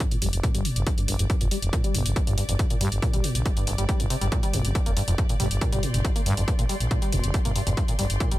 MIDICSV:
0, 0, Header, 1, 5, 480
1, 0, Start_track
1, 0, Key_signature, -2, "minor"
1, 0, Tempo, 431655
1, 963, Time_signature, 4, 2, 24, 8
1, 9327, End_track
2, 0, Start_track
2, 0, Title_t, "String section"
2, 0, Program_c, 0, 48
2, 0, Note_on_c, 0, 55, 72
2, 0, Note_on_c, 0, 67, 70
2, 0, Note_on_c, 0, 74, 73
2, 0, Note_on_c, 0, 86, 70
2, 6311, Note_on_c, 0, 84, 70
2, 6336, Note_off_c, 0, 86, 0
2, 9327, Note_off_c, 0, 55, 0
2, 9327, Note_off_c, 0, 67, 0
2, 9327, Note_off_c, 0, 74, 0
2, 9327, Note_off_c, 0, 84, 0
2, 9327, End_track
3, 0, Start_track
3, 0, Title_t, "Acid bass"
3, 0, Program_c, 1, 38
3, 3, Note_on_c, 1, 43, 86
3, 71, Note_off_c, 1, 43, 0
3, 127, Note_on_c, 1, 46, 76
3, 191, Note_off_c, 1, 46, 0
3, 244, Note_on_c, 1, 55, 78
3, 311, Note_off_c, 1, 55, 0
3, 483, Note_on_c, 1, 46, 84
3, 585, Note_off_c, 1, 46, 0
3, 607, Note_on_c, 1, 55, 77
3, 723, Note_on_c, 1, 46, 98
3, 740, Note_off_c, 1, 55, 0
3, 847, Note_on_c, 1, 50, 75
3, 864, Note_off_c, 1, 46, 0
3, 943, Note_off_c, 1, 50, 0
3, 963, Note_on_c, 1, 31, 85
3, 1031, Note_off_c, 1, 31, 0
3, 1087, Note_on_c, 1, 43, 78
3, 1183, Note_off_c, 1, 43, 0
3, 1203, Note_on_c, 1, 43, 76
3, 1271, Note_off_c, 1, 43, 0
3, 1326, Note_on_c, 1, 41, 74
3, 1390, Note_off_c, 1, 41, 0
3, 1442, Note_on_c, 1, 43, 82
3, 1511, Note_off_c, 1, 43, 0
3, 1567, Note_on_c, 1, 46, 78
3, 1631, Note_off_c, 1, 46, 0
3, 1683, Note_on_c, 1, 55, 72
3, 1751, Note_off_c, 1, 55, 0
3, 1923, Note_on_c, 1, 46, 83
3, 2025, Note_off_c, 1, 46, 0
3, 2047, Note_on_c, 1, 55, 77
3, 2163, Note_on_c, 1, 46, 103
3, 2180, Note_off_c, 1, 55, 0
3, 2286, Note_on_c, 1, 50, 77
3, 2303, Note_off_c, 1, 46, 0
3, 2382, Note_off_c, 1, 50, 0
3, 2402, Note_on_c, 1, 31, 83
3, 2471, Note_off_c, 1, 31, 0
3, 2526, Note_on_c, 1, 43, 79
3, 2623, Note_off_c, 1, 43, 0
3, 2642, Note_on_c, 1, 43, 76
3, 2711, Note_off_c, 1, 43, 0
3, 2766, Note_on_c, 1, 41, 75
3, 2830, Note_off_c, 1, 41, 0
3, 2882, Note_on_c, 1, 43, 80
3, 2951, Note_off_c, 1, 43, 0
3, 3006, Note_on_c, 1, 46, 77
3, 3070, Note_off_c, 1, 46, 0
3, 3122, Note_on_c, 1, 55, 78
3, 3191, Note_off_c, 1, 55, 0
3, 3362, Note_on_c, 1, 46, 84
3, 3465, Note_off_c, 1, 46, 0
3, 3487, Note_on_c, 1, 55, 77
3, 3603, Note_on_c, 1, 46, 96
3, 3619, Note_off_c, 1, 55, 0
3, 3726, Note_on_c, 1, 50, 74
3, 3743, Note_off_c, 1, 46, 0
3, 3822, Note_off_c, 1, 50, 0
3, 3842, Note_on_c, 1, 31, 83
3, 3911, Note_off_c, 1, 31, 0
3, 3966, Note_on_c, 1, 43, 77
3, 4062, Note_off_c, 1, 43, 0
3, 4082, Note_on_c, 1, 43, 76
3, 4124, Note_off_c, 1, 43, 0
3, 4207, Note_on_c, 1, 55, 77
3, 4271, Note_off_c, 1, 55, 0
3, 4322, Note_on_c, 1, 55, 83
3, 4446, Note_on_c, 1, 43, 109
3, 4462, Note_off_c, 1, 55, 0
3, 4510, Note_off_c, 1, 43, 0
3, 4562, Note_on_c, 1, 48, 75
3, 4631, Note_off_c, 1, 48, 0
3, 4686, Note_on_c, 1, 55, 75
3, 4750, Note_off_c, 1, 55, 0
3, 4802, Note_on_c, 1, 46, 80
3, 4904, Note_off_c, 1, 46, 0
3, 4925, Note_on_c, 1, 55, 74
3, 5042, Note_on_c, 1, 46, 98
3, 5058, Note_off_c, 1, 55, 0
3, 5166, Note_on_c, 1, 50, 78
3, 5182, Note_off_c, 1, 46, 0
3, 5262, Note_off_c, 1, 50, 0
3, 5283, Note_on_c, 1, 31, 86
3, 5351, Note_off_c, 1, 31, 0
3, 5407, Note_on_c, 1, 58, 80
3, 5471, Note_off_c, 1, 58, 0
3, 5524, Note_on_c, 1, 43, 76
3, 5591, Note_off_c, 1, 43, 0
3, 5647, Note_on_c, 1, 41, 74
3, 5711, Note_off_c, 1, 41, 0
3, 5763, Note_on_c, 1, 43, 83
3, 5831, Note_off_c, 1, 43, 0
3, 5887, Note_on_c, 1, 46, 73
3, 5951, Note_off_c, 1, 46, 0
3, 6003, Note_on_c, 1, 55, 77
3, 6071, Note_off_c, 1, 55, 0
3, 6243, Note_on_c, 1, 46, 78
3, 6345, Note_off_c, 1, 46, 0
3, 6367, Note_on_c, 1, 55, 79
3, 6482, Note_on_c, 1, 46, 100
3, 6499, Note_off_c, 1, 55, 0
3, 6607, Note_on_c, 1, 50, 74
3, 6623, Note_off_c, 1, 46, 0
3, 6703, Note_off_c, 1, 50, 0
3, 6723, Note_on_c, 1, 31, 84
3, 6791, Note_off_c, 1, 31, 0
3, 6846, Note_on_c, 1, 58, 77
3, 6910, Note_off_c, 1, 58, 0
3, 6963, Note_on_c, 1, 43, 75
3, 7031, Note_off_c, 1, 43, 0
3, 7087, Note_on_c, 1, 41, 73
3, 7150, Note_off_c, 1, 41, 0
3, 7204, Note_on_c, 1, 43, 83
3, 7271, Note_off_c, 1, 43, 0
3, 7328, Note_on_c, 1, 46, 79
3, 7391, Note_off_c, 1, 46, 0
3, 7443, Note_on_c, 1, 55, 74
3, 7511, Note_off_c, 1, 55, 0
3, 7683, Note_on_c, 1, 46, 86
3, 7785, Note_off_c, 1, 46, 0
3, 7807, Note_on_c, 1, 55, 76
3, 7922, Note_on_c, 1, 46, 102
3, 7939, Note_off_c, 1, 55, 0
3, 8046, Note_on_c, 1, 50, 78
3, 8063, Note_off_c, 1, 46, 0
3, 8143, Note_off_c, 1, 50, 0
3, 8163, Note_on_c, 1, 31, 80
3, 8231, Note_off_c, 1, 31, 0
3, 8286, Note_on_c, 1, 58, 81
3, 8350, Note_off_c, 1, 58, 0
3, 8402, Note_on_c, 1, 43, 76
3, 8470, Note_off_c, 1, 43, 0
3, 8526, Note_on_c, 1, 41, 78
3, 8590, Note_off_c, 1, 41, 0
3, 8642, Note_on_c, 1, 43, 83
3, 8711, Note_off_c, 1, 43, 0
3, 8766, Note_on_c, 1, 46, 77
3, 8830, Note_off_c, 1, 46, 0
3, 8882, Note_on_c, 1, 55, 75
3, 8951, Note_off_c, 1, 55, 0
3, 9122, Note_on_c, 1, 46, 85
3, 9225, Note_off_c, 1, 46, 0
3, 9246, Note_on_c, 1, 55, 78
3, 9327, Note_off_c, 1, 55, 0
3, 9327, End_track
4, 0, Start_track
4, 0, Title_t, "FM bass"
4, 0, Program_c, 2, 39
4, 243, Note_on_c, 2, 29, 95
4, 325, Note_off_c, 2, 29, 0
4, 367, Note_on_c, 2, 29, 82
4, 444, Note_off_c, 2, 29, 0
4, 606, Note_on_c, 2, 31, 75
4, 683, Note_off_c, 2, 31, 0
4, 846, Note_on_c, 2, 31, 78
4, 923, Note_off_c, 2, 31, 0
4, 1202, Note_on_c, 2, 31, 97
4, 1284, Note_off_c, 2, 31, 0
4, 1326, Note_on_c, 2, 31, 81
4, 1403, Note_off_c, 2, 31, 0
4, 1566, Note_on_c, 2, 29, 78
4, 1643, Note_off_c, 2, 29, 0
4, 1806, Note_on_c, 2, 29, 79
4, 1883, Note_off_c, 2, 29, 0
4, 2163, Note_on_c, 2, 31, 96
4, 2245, Note_off_c, 2, 31, 0
4, 2287, Note_on_c, 2, 31, 85
4, 2364, Note_off_c, 2, 31, 0
4, 2527, Note_on_c, 2, 31, 76
4, 2604, Note_off_c, 2, 31, 0
4, 2767, Note_on_c, 2, 31, 80
4, 2843, Note_off_c, 2, 31, 0
4, 3123, Note_on_c, 2, 43, 92
4, 3205, Note_off_c, 2, 43, 0
4, 3246, Note_on_c, 2, 31, 82
4, 3323, Note_off_c, 2, 31, 0
4, 3487, Note_on_c, 2, 34, 77
4, 3564, Note_off_c, 2, 34, 0
4, 3726, Note_on_c, 2, 34, 78
4, 3803, Note_off_c, 2, 34, 0
4, 4082, Note_on_c, 2, 31, 96
4, 4164, Note_off_c, 2, 31, 0
4, 4206, Note_on_c, 2, 31, 80
4, 4283, Note_off_c, 2, 31, 0
4, 4446, Note_on_c, 2, 31, 76
4, 4523, Note_off_c, 2, 31, 0
4, 4687, Note_on_c, 2, 31, 83
4, 4764, Note_off_c, 2, 31, 0
4, 5042, Note_on_c, 2, 31, 94
4, 5124, Note_off_c, 2, 31, 0
4, 5166, Note_on_c, 2, 31, 82
4, 5243, Note_off_c, 2, 31, 0
4, 5406, Note_on_c, 2, 29, 77
4, 5483, Note_off_c, 2, 29, 0
4, 5646, Note_on_c, 2, 29, 82
4, 5723, Note_off_c, 2, 29, 0
4, 6003, Note_on_c, 2, 31, 93
4, 6085, Note_off_c, 2, 31, 0
4, 6127, Note_on_c, 2, 31, 80
4, 6204, Note_off_c, 2, 31, 0
4, 6367, Note_on_c, 2, 31, 74
4, 6444, Note_off_c, 2, 31, 0
4, 6607, Note_on_c, 2, 31, 79
4, 6684, Note_off_c, 2, 31, 0
4, 6963, Note_on_c, 2, 43, 94
4, 7045, Note_off_c, 2, 43, 0
4, 7086, Note_on_c, 2, 31, 81
4, 7163, Note_off_c, 2, 31, 0
4, 7327, Note_on_c, 2, 34, 76
4, 7403, Note_off_c, 2, 34, 0
4, 7567, Note_on_c, 2, 34, 79
4, 7644, Note_off_c, 2, 34, 0
4, 7923, Note_on_c, 2, 29, 96
4, 8005, Note_off_c, 2, 29, 0
4, 8047, Note_on_c, 2, 29, 83
4, 8124, Note_off_c, 2, 29, 0
4, 8288, Note_on_c, 2, 31, 77
4, 8364, Note_off_c, 2, 31, 0
4, 8527, Note_on_c, 2, 31, 82
4, 8604, Note_off_c, 2, 31, 0
4, 8883, Note_on_c, 2, 31, 90
4, 8965, Note_off_c, 2, 31, 0
4, 9007, Note_on_c, 2, 31, 81
4, 9083, Note_off_c, 2, 31, 0
4, 9247, Note_on_c, 2, 29, 76
4, 9324, Note_off_c, 2, 29, 0
4, 9327, End_track
5, 0, Start_track
5, 0, Title_t, "Drums"
5, 3, Note_on_c, 9, 36, 121
5, 3, Note_on_c, 9, 42, 68
5, 114, Note_off_c, 9, 42, 0
5, 115, Note_off_c, 9, 36, 0
5, 127, Note_on_c, 9, 42, 68
5, 238, Note_off_c, 9, 42, 0
5, 243, Note_on_c, 9, 46, 109
5, 354, Note_off_c, 9, 46, 0
5, 367, Note_on_c, 9, 42, 71
5, 478, Note_off_c, 9, 42, 0
5, 483, Note_on_c, 9, 36, 117
5, 483, Note_on_c, 9, 42, 69
5, 594, Note_off_c, 9, 36, 0
5, 594, Note_off_c, 9, 42, 0
5, 607, Note_on_c, 9, 42, 68
5, 718, Note_off_c, 9, 42, 0
5, 723, Note_on_c, 9, 46, 92
5, 834, Note_off_c, 9, 46, 0
5, 847, Note_on_c, 9, 42, 67
5, 958, Note_off_c, 9, 42, 0
5, 962, Note_on_c, 9, 42, 64
5, 963, Note_on_c, 9, 36, 122
5, 1074, Note_off_c, 9, 36, 0
5, 1074, Note_off_c, 9, 42, 0
5, 1087, Note_on_c, 9, 42, 66
5, 1198, Note_off_c, 9, 42, 0
5, 1203, Note_on_c, 9, 46, 113
5, 1314, Note_off_c, 9, 46, 0
5, 1327, Note_on_c, 9, 42, 67
5, 1438, Note_off_c, 9, 42, 0
5, 1443, Note_on_c, 9, 36, 127
5, 1443, Note_on_c, 9, 42, 65
5, 1554, Note_off_c, 9, 36, 0
5, 1554, Note_off_c, 9, 42, 0
5, 1566, Note_on_c, 9, 42, 69
5, 1677, Note_off_c, 9, 42, 0
5, 1682, Note_on_c, 9, 46, 94
5, 1794, Note_off_c, 9, 46, 0
5, 1807, Note_on_c, 9, 42, 70
5, 1918, Note_off_c, 9, 42, 0
5, 1923, Note_on_c, 9, 36, 125
5, 1923, Note_on_c, 9, 42, 68
5, 2034, Note_off_c, 9, 36, 0
5, 2034, Note_off_c, 9, 42, 0
5, 2047, Note_on_c, 9, 42, 68
5, 2158, Note_off_c, 9, 42, 0
5, 2163, Note_on_c, 9, 46, 108
5, 2274, Note_off_c, 9, 46, 0
5, 2287, Note_on_c, 9, 42, 68
5, 2398, Note_off_c, 9, 42, 0
5, 2403, Note_on_c, 9, 36, 122
5, 2403, Note_on_c, 9, 42, 70
5, 2514, Note_off_c, 9, 36, 0
5, 2514, Note_off_c, 9, 42, 0
5, 2527, Note_on_c, 9, 42, 70
5, 2638, Note_off_c, 9, 42, 0
5, 2643, Note_on_c, 9, 46, 96
5, 2754, Note_off_c, 9, 46, 0
5, 2766, Note_on_c, 9, 42, 66
5, 2878, Note_off_c, 9, 42, 0
5, 2883, Note_on_c, 9, 36, 119
5, 2883, Note_on_c, 9, 42, 64
5, 2994, Note_off_c, 9, 36, 0
5, 2994, Note_off_c, 9, 42, 0
5, 3006, Note_on_c, 9, 42, 62
5, 3117, Note_off_c, 9, 42, 0
5, 3123, Note_on_c, 9, 46, 114
5, 3234, Note_off_c, 9, 46, 0
5, 3247, Note_on_c, 9, 42, 64
5, 3358, Note_off_c, 9, 42, 0
5, 3363, Note_on_c, 9, 36, 119
5, 3363, Note_on_c, 9, 42, 64
5, 3474, Note_off_c, 9, 36, 0
5, 3474, Note_off_c, 9, 42, 0
5, 3486, Note_on_c, 9, 42, 65
5, 3597, Note_off_c, 9, 42, 0
5, 3602, Note_on_c, 9, 46, 98
5, 3714, Note_off_c, 9, 46, 0
5, 3726, Note_on_c, 9, 42, 66
5, 3838, Note_off_c, 9, 42, 0
5, 3843, Note_on_c, 9, 36, 123
5, 3843, Note_on_c, 9, 42, 65
5, 3954, Note_off_c, 9, 36, 0
5, 3954, Note_off_c, 9, 42, 0
5, 3967, Note_on_c, 9, 42, 63
5, 4078, Note_off_c, 9, 42, 0
5, 4083, Note_on_c, 9, 46, 106
5, 4194, Note_off_c, 9, 46, 0
5, 4207, Note_on_c, 9, 42, 65
5, 4318, Note_off_c, 9, 42, 0
5, 4323, Note_on_c, 9, 36, 122
5, 4323, Note_on_c, 9, 42, 67
5, 4434, Note_off_c, 9, 36, 0
5, 4434, Note_off_c, 9, 42, 0
5, 4447, Note_on_c, 9, 42, 67
5, 4558, Note_off_c, 9, 42, 0
5, 4563, Note_on_c, 9, 46, 92
5, 4674, Note_off_c, 9, 46, 0
5, 4687, Note_on_c, 9, 42, 63
5, 4798, Note_off_c, 9, 42, 0
5, 4803, Note_on_c, 9, 36, 114
5, 4803, Note_on_c, 9, 42, 62
5, 4914, Note_off_c, 9, 36, 0
5, 4914, Note_off_c, 9, 42, 0
5, 4926, Note_on_c, 9, 42, 62
5, 5038, Note_off_c, 9, 42, 0
5, 5043, Note_on_c, 9, 46, 106
5, 5154, Note_off_c, 9, 46, 0
5, 5167, Note_on_c, 9, 42, 63
5, 5278, Note_off_c, 9, 42, 0
5, 5283, Note_on_c, 9, 36, 119
5, 5283, Note_on_c, 9, 42, 62
5, 5394, Note_off_c, 9, 36, 0
5, 5394, Note_off_c, 9, 42, 0
5, 5406, Note_on_c, 9, 42, 63
5, 5518, Note_off_c, 9, 42, 0
5, 5523, Note_on_c, 9, 46, 91
5, 5634, Note_off_c, 9, 46, 0
5, 5646, Note_on_c, 9, 42, 65
5, 5757, Note_off_c, 9, 42, 0
5, 5763, Note_on_c, 9, 36, 121
5, 5763, Note_on_c, 9, 42, 62
5, 5874, Note_off_c, 9, 36, 0
5, 5874, Note_off_c, 9, 42, 0
5, 5886, Note_on_c, 9, 42, 63
5, 5998, Note_off_c, 9, 42, 0
5, 6002, Note_on_c, 9, 45, 94
5, 6002, Note_on_c, 9, 46, 107
5, 6114, Note_off_c, 9, 45, 0
5, 6114, Note_off_c, 9, 46, 0
5, 6126, Note_on_c, 9, 42, 66
5, 6237, Note_off_c, 9, 42, 0
5, 6243, Note_on_c, 9, 36, 112
5, 6243, Note_on_c, 9, 42, 67
5, 6354, Note_off_c, 9, 36, 0
5, 6354, Note_off_c, 9, 42, 0
5, 6366, Note_on_c, 9, 42, 65
5, 6366, Note_on_c, 9, 45, 98
5, 6478, Note_off_c, 9, 42, 0
5, 6478, Note_off_c, 9, 45, 0
5, 6483, Note_on_c, 9, 46, 88
5, 6594, Note_off_c, 9, 46, 0
5, 6606, Note_on_c, 9, 42, 62
5, 6606, Note_on_c, 9, 45, 83
5, 6718, Note_off_c, 9, 42, 0
5, 6718, Note_off_c, 9, 45, 0
5, 6723, Note_on_c, 9, 36, 113
5, 6723, Note_on_c, 9, 42, 61
5, 6834, Note_off_c, 9, 36, 0
5, 6834, Note_off_c, 9, 42, 0
5, 6847, Note_on_c, 9, 42, 62
5, 6958, Note_off_c, 9, 42, 0
5, 6963, Note_on_c, 9, 46, 103
5, 7074, Note_off_c, 9, 46, 0
5, 7087, Note_on_c, 9, 42, 64
5, 7198, Note_off_c, 9, 42, 0
5, 7203, Note_on_c, 9, 36, 110
5, 7203, Note_on_c, 9, 42, 64
5, 7314, Note_off_c, 9, 36, 0
5, 7314, Note_off_c, 9, 42, 0
5, 7327, Note_on_c, 9, 42, 62
5, 7438, Note_off_c, 9, 42, 0
5, 7443, Note_on_c, 9, 46, 88
5, 7554, Note_off_c, 9, 46, 0
5, 7567, Note_on_c, 9, 42, 62
5, 7678, Note_off_c, 9, 42, 0
5, 7683, Note_on_c, 9, 36, 118
5, 7683, Note_on_c, 9, 42, 63
5, 7794, Note_off_c, 9, 36, 0
5, 7794, Note_off_c, 9, 42, 0
5, 7806, Note_on_c, 9, 42, 62
5, 7918, Note_off_c, 9, 42, 0
5, 7923, Note_on_c, 9, 45, 90
5, 7923, Note_on_c, 9, 46, 100
5, 8034, Note_off_c, 9, 45, 0
5, 8034, Note_off_c, 9, 46, 0
5, 8046, Note_on_c, 9, 42, 65
5, 8157, Note_off_c, 9, 42, 0
5, 8162, Note_on_c, 9, 42, 66
5, 8163, Note_on_c, 9, 36, 110
5, 8273, Note_off_c, 9, 42, 0
5, 8274, Note_off_c, 9, 36, 0
5, 8286, Note_on_c, 9, 42, 66
5, 8286, Note_on_c, 9, 45, 93
5, 8397, Note_off_c, 9, 42, 0
5, 8397, Note_off_c, 9, 45, 0
5, 8402, Note_on_c, 9, 46, 87
5, 8513, Note_off_c, 9, 46, 0
5, 8526, Note_on_c, 9, 42, 63
5, 8526, Note_on_c, 9, 45, 81
5, 8638, Note_off_c, 9, 42, 0
5, 8638, Note_off_c, 9, 45, 0
5, 8642, Note_on_c, 9, 42, 64
5, 8643, Note_on_c, 9, 36, 106
5, 8754, Note_off_c, 9, 36, 0
5, 8754, Note_off_c, 9, 42, 0
5, 8766, Note_on_c, 9, 42, 63
5, 8877, Note_off_c, 9, 42, 0
5, 8882, Note_on_c, 9, 46, 102
5, 8993, Note_off_c, 9, 46, 0
5, 9006, Note_on_c, 9, 42, 65
5, 9117, Note_off_c, 9, 42, 0
5, 9122, Note_on_c, 9, 42, 66
5, 9123, Note_on_c, 9, 36, 115
5, 9234, Note_off_c, 9, 36, 0
5, 9234, Note_off_c, 9, 42, 0
5, 9246, Note_on_c, 9, 42, 67
5, 9327, Note_off_c, 9, 42, 0
5, 9327, End_track
0, 0, End_of_file